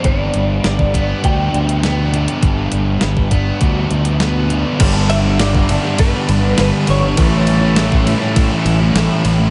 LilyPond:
<<
  \new Staff \with { instrumentName = "Clean electric guitar" } { \time 4/4 \key g \major \tempo 4 = 101 d''4 d''4 g''2~ | g''2. r4 | r8 e''8 d''4 b'4 b'8 cis''8~ | cis''4. r2 r8 | }
  \new Staff \with { instrumentName = "Overdriven electric guitar" } { \time 4/4 \key g \major g,4. b8 d4 b8 d8 | g,4. b8 d4 b8 d8 | <g, d g b d'>8 <d g b d'>16 <g b d'>16 <g, d g b d'>8 <d g b d'>16 <g b d'>16 <d g b d'>16 <g b d'>8 <g b d'>16 <g, d g b d'>8 <d g b d'>16 <g b d'>16 | <a, e g cis' e'>8 <e g cis' e'>16 <g cis' e'>16 <a, e g cis' e'>8 <e g cis' e'>16 <g cis' e'>16 <e g cis' e'>16 <g cis' e'>8 <g cis' e'>16 <a, e g cis' e'>8 <e g cis' e'>16 <g cis' e'>16 | }
  \new Staff \with { instrumentName = "Distorted electric guitar" } { \clef bass \time 4/4 \key g \major g4 g8 d'8 fis'8 d'8 b8 d'8 | g4 g8 d'8 fis'8 d'8 b8 d'8 | <g, d g>8. <d g>16 <g, d g>8 <g, d g>8. <d g>16 <g, d g>16 <d g>16 <g, d g>8 <g, d g>8 | <a, e a>8. <e a>16 <a, e a>8 <a, e a>8. <e a>16 <a, e a>16 <e a>16 <a, e a>8 <a, e a>8 | }
  \new Staff \with { instrumentName = "Overdriven electric guitar" } { \clef bass \time 4/4 \key g \major r1 | r1 | <g, d g>1 | <a, e a>1 | }
  \new Staff \with { instrumentName = "Fingered electric bass" } { \clef bass \time 4/4 \key g \major g,,8 g,,8 g,,4 d,8 d,4. | g,,8 g,,8 g,,4 d,8 d,4. | g,,2 r8 g,,8 g,,16 r16 g,,8 | a,,2 r8 a,,8 a,,16 r16 a,,8 | }
  \new DrumStaff \with { instrumentName = "Drums" } \drummode { \time 4/4 <hh bd>8 hh8 <hh sn>16 bd16 <hh bd>8 <hh bd>8 hh16 hh16 <hh sn>8 hh16 hh16 | <hh bd>8 hh8 <hh sn>16 bd16 <hh bd>8 <hh bd>8 hh16 hh16 <hh sn>8 hh8 | <cymc bd cymr>8 cymr8 <cymr sn>16 bd16 cymr16 sn16 <bd cymr>8 cymr8 <cymr sn>8 cymr8 | <bd cymr>8 cymr8 <cymr sn>16 bd16 cymr16 sn16 <bd cymr>8 cymr8 <cymr sn>8 cymr8 | }
>>